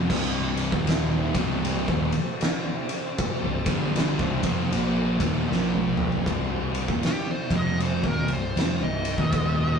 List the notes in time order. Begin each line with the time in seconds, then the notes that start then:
Already playing: F3 C4 G4
0.10 C1 C2 G2 C3 C5, kick, crash
0.57 ride
0.72 D#1 D#2 A#2 D#3, kick
0.87 snare, ride
1.34 C1 C2 G2 C3, kick, ride
1.65 ride
1.88 D#1 D#2 A#2, kick
2.12 ride
2.41 snare, ride
2.89 ride
3.18 kick, ride
3.42 C1 C2 G2
3.66 G1 G2 D3 G3, kick, ride
3.96 snare, ride
4.19 C1 C2 G2, kick
4.43 F1 F2 C3 F3, kick, ride
4.72 A#1 A#2 F3 A#3, ride
5.19 D#1 D#2 A#2 D#3, kick, ride
5.49 A#1 A#2 F3 A#3 F4, snare
5.74 high tom
5.97 mid tom
6.12 floor tom
6.26 C1 C2 G2 C3 G3 D#4, kick, ride
6.75 ride
6.88 D#1 D#2 A#2, kick
7.02 G4, muted distorted electric guitar stroke, muted picked electric bass stroke, snare, ride
7.31 C5
7.50 F1 F2 C3 F3, kick, ride
7.56 D#5
7.80 C5, ride
8.03 D#1 D#2 A#2, kick
8.08 A#4
8.27 C1 C2 G2, ride
8.33 C5
8.56 F1 F2 C3, snare, ride
8.80 C1 C2 G2 D#5
9.05 ride
9.18 D#1 D#2 A#2 D#3, kick
9.32 kick, ride